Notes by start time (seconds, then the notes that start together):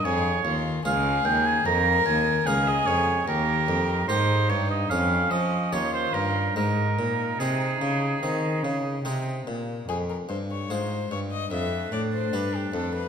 0.05 F2 G#4 C#5
0.45 D#2 F4
0.85 C#2 F4 G#4 F5
1.25 D#2 G5
1.46 G#5
1.66 F2 A#4 A#5
2.06 D#2 G#5
2.46 C#2 G#4 A#4 F5
2.68 D#5
2.87 F2 C#5
3.27 D#2 G4 A#4
3.68 F2
4.08 G#2 D#4 G4 A#4 C5
4.49 G2 C#5
4.70 D#5
4.90 F2 C#4 G#4 F5
5.31 F3 D#5
5.72 D#2 C#4 D#4 F4 G4 C#5
5.93 C5
6.14 G2 A#4
6.56 G#2 G#3 D#4 A#4
6.98 A#2
7.39 C3 C4 D#4 G#4
7.81 C#3
8.22 D#3 C4
8.63 C#3
9.05 C3 C4 D#4 G#4
9.47 A#2
9.88 F2 G#4
10.10 A#4
10.29 G2 C5
10.51 C#5
10.70 G#2 F4 G#4 C5
11.11 G2 C#5
11.32 D#5
11.51 F2 D4 E5
11.92 A2 D5
12.13 C5
12.32 G2 D4 G4 B4
12.55 G4
12.73 F2 A4
12.95 B4